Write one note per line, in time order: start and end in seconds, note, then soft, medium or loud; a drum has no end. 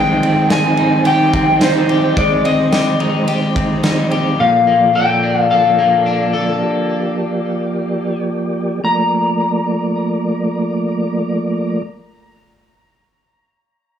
0.00 0.77 G#2 medium
0.00 0.78 D#3 medium
0.00 4.35 D#3 medium
0.00 0.79 G3 medium
0.00 2.16 G#3 medium
0.00 0.78 C4 medium
0.00 4.35 C4 medium
0.00 0.75 D#4 medium
0.00 2.15 D#4 medium
0.00 4.35 C5 medium
0.00 0.51 G5 loud
0.23 1.32 C4 medium
0.23 ride medium
0.50 1.06 G#5 loud
0.50 snare loud
0.50 ride medium
0.50 tambourine medium
0.76 1.07 C4 soft
0.76 1.05 D#4 soft
0.76 1.60 D#4 medium
0.76 ride soft
0.82 1.05 G3 soft
1.04 1.58 D#3 medium
1.04 1.60 G3 medium
1.04 1.88 G4 medium
1.04 1.64 G5 loud
1.04 ride medium
1.08 1.62 C4 medium
1.08 1.63 D#4 medium
1.34 2.43 C4 medium
1.34 kick loud
1.34 ride soft
1.60 2.16 D#3 medium
1.60 2.17 G3 medium
1.60 2.99 D#4 medium
1.60 2.14 C5 loud
1.60 snare loud
1.60 ride medium
1.60 tambourine medium
1.64 2.18 C4 medium
1.64 2.19 D#4 medium
1.89 2.71 G4 medium
1.89 ride soft
2.17 4.39 G#3 medium
2.17 4.37 G#3 medium
2.17 2.45 D5 loud
2.17 kick loud
2.17 ride medium
2.44 3.55 C4 medium
2.44 3.52 D#5 medium
2.44 ride medium
2.72 3.27 G4 medium
2.72 snare loud
2.72 ride medium
2.72 tambourine medium
3.00 3.82 D#4 medium
3.00 ride soft
3.28 4.10 G4 medium
3.28 ride medium
3.56 4.45 C4 medium
3.56 kick loud
3.56 ride soft
3.83 4.45 D#4 medium
3.83 snare loud
3.83 ride medium
3.83 tambourine medium
4.11 4.45 G4 medium
4.11 ride soft
4.39 6.62 A#2 medium
4.39 8.80 F3 medium
4.39 8.80 A#3 medium
4.39 6.59 A4 medium
4.39 8.80 D5 medium
4.39 4.95 F5 loud
4.67 5.78 A#3 medium
4.95 5.51 A4 medium
4.95 5.50 G5 loud
5.23 6.06 D4 medium
5.51 6.33 A4 medium
5.51 8.24 F5 loud
5.79 7.17 A#3 medium
6.06 7.17 D4 medium
6.33 7.17 A4 medium
6.62 8.82 G4 medium
8.84 11.82 F3 medium
8.84 11.82 A3 medium
8.84 11.82 A#3 medium
8.84 11.82 D5 medium
8.84 11.82 A#5 medium